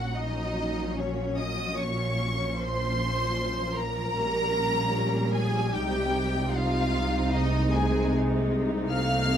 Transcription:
0.00 4.13 A#1 soft
0.00 4.15 A#2 medium
0.00 2.54 F#3 medium
0.00 4.12 C#4 medium
0.00 0.15 F#4 medium
0.00 0.15 F#5 medium
0.16 0.96 D#4 medium
0.16 0.98 D#5 medium
0.97 1.38 C#4 medium
0.97 1.37 C#5 medium
1.37 1.78 D#5 medium
1.37 1.78 D#6 medium
1.78 2.58 C#5 medium
1.78 2.58 C#6 medium
2.57 4.11 F3 medium
2.57 3.74 C5 medium
2.57 3.76 C6 medium
3.76 5.32 A#4 medium
3.76 5.33 A#5 medium
4.14 5.69 A#1 medium
4.14 5.70 A#2 medium
4.14 7.28 G3 medium
4.14 5.68 C#4 medium
5.32 5.72 G#4 medium
5.32 5.72 G#5 medium
5.72 9.37 C2 medium
5.72 9.37 C3 medium
5.72 9.37 D#4 medium
5.72 6.53 G4 medium
5.72 6.53 G5 medium
6.52 7.31 F4 medium
6.52 7.33 F5 medium
7.32 8.89 G#3 medium
7.32 7.72 D#4 medium
7.32 7.73 D#5 medium
7.72 8.13 G#4 medium
7.72 8.13 G#5 medium
8.91 9.37 A3 medium
8.91 9.37 F5 medium
8.91 9.37 F6 loud

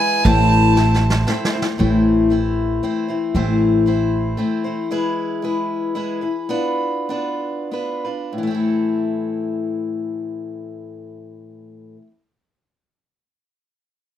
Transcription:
0.00 0.24 E3 medium
0.00 0.24 G#3 medium
0.00 0.25 E4 medium
0.00 0.25 G#4 medium
0.00 0.26 B4 medium
0.00 0.25 G#5 loud
0.24 1.24 A1 loud
0.24 0.76 A2 medium
0.24 0.76 E3 medium
0.24 0.74 A3 medium
0.24 0.75 C4 medium
0.24 0.76 E4 medium
0.24 0.77 C5 medium
0.24 1.27 A5 loud
0.24 kick medium
0.24 closed hi-hat medium
0.76 1.26 A3 medium
0.76 1.26 C4 medium
0.76 1.27 E4 medium
0.76 1.27 C5 medium
0.76 snare medium
0.94 snare soft
1.10 snare medium
1.27 1.53 A3 medium
1.27 1.53 C4 medium
1.27 1.53 E4 medium
1.27 1.52 C5 medium
1.27 snare medium
1.45 snare medium
1.53 1.78 A3 soft
1.53 1.78 C4 soft
1.53 1.78 E4 medium
1.53 1.79 C5 medium
1.62 snare medium
1.78 2.79 A1 medium
1.78 2.30 A2 medium
1.78 3.34 E3 medium
1.78 2.29 A3 medium
1.78 2.30 C4 medium
1.78 2.31 E4 medium
1.78 2.31 C5 medium
2.30 2.82 A3 medium
2.30 2.82 C4 medium
2.30 2.84 E4 medium
2.30 2.83 C5 medium
2.83 3.08 A3 medium
2.83 3.09 C4 medium
2.83 3.08 E4 medium
2.83 3.07 C5 medium
3.08 3.35 A3 soft
3.08 3.34 C4 soft
3.08 3.34 E4 soft
3.08 3.34 C5 soft
3.35 4.34 A1 medium
3.35 3.86 A2 medium
3.35 6.53 E3 medium
3.35 3.85 A3 medium
3.35 3.86 C4 medium
3.35 3.87 E4 medium
3.35 3.86 C5 medium
3.86 4.36 A3 medium
3.86 4.37 C4 medium
3.86 4.38 E4 medium
3.86 4.38 C5 medium
4.37 4.63 A3 medium
4.37 4.63 C4 medium
4.37 4.63 E4 medium
4.37 4.63 C5 medium
4.64 4.90 A3 soft
4.64 4.90 C4 soft
4.64 4.90 E4 soft
4.64 4.89 C5 soft
4.91 5.41 G#3 medium
4.91 5.42 E4 medium
4.91 5.42 G#4 medium
4.91 5.44 B4 medium
5.42 5.94 G#3 soft
5.42 5.94 E4 medium
5.42 5.95 G#4 medium
5.42 5.95 B4 medium
5.95 6.22 G#3 medium
5.95 6.22 E4 medium
5.95 6.21 G#4 medium
5.95 6.20 B4 medium
6.21 6.49 E4 soft
6.21 6.50 G#4 soft
6.21 6.49 B4 soft
6.49 7.08 B3 medium
6.49 7.09 D4 medium
6.49 7.09 F4 medium
6.49 7.09 B4 medium
7.09 7.70 B3 medium
7.09 7.71 D4 medium
7.09 7.72 F4 medium
7.09 7.72 B4 medium
7.71 8.04 B3 soft
7.71 8.05 D4 soft
7.71 8.04 F4 soft
7.71 8.03 B4 medium
8.05 8.40 D4 soft
8.05 8.40 F4 soft
8.05 8.39 B4 soft
8.33 11.96 A2 medium
8.38 12.02 E3 medium
8.43 12.07 A3 medium
8.47 12.11 C4 medium
8.47 12.14 E4 medium
8.55 12.18 A4 medium

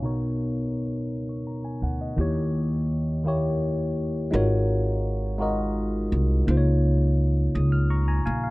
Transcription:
0.01 1.11 B1 medium
0.01 0.66 B2 medium
0.01 0.67 B3 medium
0.01 0.67 D#4 medium
0.01 0.68 A#4 medium
0.06 0.68 C#5 medium
1.11 1.78 C#2 medium
1.29 1.45 C#6 medium
1.47 1.63 A#5 medium
1.65 1.81 G#5 medium
1.82 2.14 D2 medium
1.82 1.99 F#5 medium
2.01 2.34 D#5 medium
2.16 4.28 D#2 loud
2.16 2.81 D#3 medium
2.16 2.82 A#3 medium
2.16 2.82 E4 medium
2.16 2.83 G4 medium
2.21 2.83 C#5 medium
3.24 3.88 D#3 medium
3.24 3.89 A#3 medium
3.24 3.89 E4 medium
3.24 3.90 G4 medium
3.28 3.91 C#5 medium
4.31 6.07 G#1 loud
4.31 4.95 G#3 medium
4.31 4.96 D#4 medium
4.31 4.96 F4 medium
4.31 4.97 F#4 medium
4.31 4.97 A#4 medium
4.35 4.98 C#5 loud
5.38 6.03 G#3 medium
5.38 6.03 D#4 medium
5.38 6.03 F4 medium
5.38 6.04 F#4 medium
5.38 6.04 A#4 medium
5.42 6.05 D#5 medium
6.12 6.43 C2 medium
6.46 7.50 C#2 loud
6.46 7.10 C#3 medium
6.46 7.11 A#3 medium
6.46 7.11 D#4 medium
6.46 7.12 F4 medium
6.51 6.55 C5 medium
6.57 7.16 C#5 medium
7.55 8.21 C#2 loud
7.55 7.71 D#6 medium
7.72 7.88 F6 medium
7.90 8.06 A#5 medium
7.90 8.06 C#6 medium
8.08 8.24 G#5 medium
8.08 8.24 A#5 medium
8.26 8.50 A#1 medium
8.26 8.42 F5 medium
8.26 8.42 G#5 medium
8.43 8.50 F5 medium

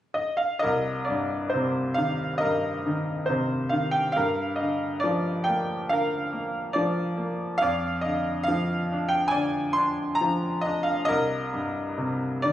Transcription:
0.14 0.37 D#5 medium
0.37 0.59 F5 medium
0.59 2.38 A#4 medium
0.59 1.03 D#5 medium
0.64 4.13 C2 medium
1.05 2.41 G2 soft
1.05 1.48 D5 medium
1.50 1.93 C5 medium
1.54 3.26 C3 soft
1.94 2.85 D#3 soft
1.94 2.42 F5 medium
2.38 4.12 A#4 soft
2.38 3.24 D#5 medium
2.43 4.13 G2 soft
2.86 3.71 D#3 soft
3.26 4.14 C3 soft
3.26 3.72 C5 medium
3.69 4.15 D#3 soft
3.69 3.91 F5 medium
3.91 4.16 G5 medium
4.12 7.57 G2 medium
4.12 4.55 F5 medium
4.16 5.86 A#4 medium
4.56 5.03 D#5 medium
4.61 5.89 D3 soft
5.00 5.46 D5 medium
5.04 6.71 F3 soft
5.44 5.90 G5 medium
5.49 6.31 A#3 soft
5.89 7.58 D3 soft
5.89 7.59 A#4 medium
5.89 6.77 F5 medium
6.33 7.16 A#3 soft
6.73 7.59 F3 medium
6.73 7.34 D5 medium
7.17 7.60 A#3 soft
7.58 11.05 F2 medium
7.58 8.00 F5 medium
7.62 9.29 D5 medium
8.01 9.32 D3 soft
8.01 8.47 D#5 medium
8.43 9.05 F5 medium
8.48 10.17 F3 soft
8.92 9.75 D4 soft
9.09 9.30 G5 medium
9.28 11.04 D5 medium
9.28 9.70 G#5 medium
9.34 11.05 D3 soft
9.73 10.64 D4 soft
9.73 10.20 C6 medium
10.15 10.59 A#5 medium
10.21 11.07 F3 soft
10.61 11.08 D4 soft
10.61 10.86 D#5 medium
10.83 11.08 F5 medium
11.05 12.53 C2 medium
11.05 12.53 A#4 medium
11.05 12.46 D#5 medium
11.53 12.53 G2 soft
11.98 12.53 C3 soft
12.42 12.53 D#3 soft
12.42 12.53 D5 medium

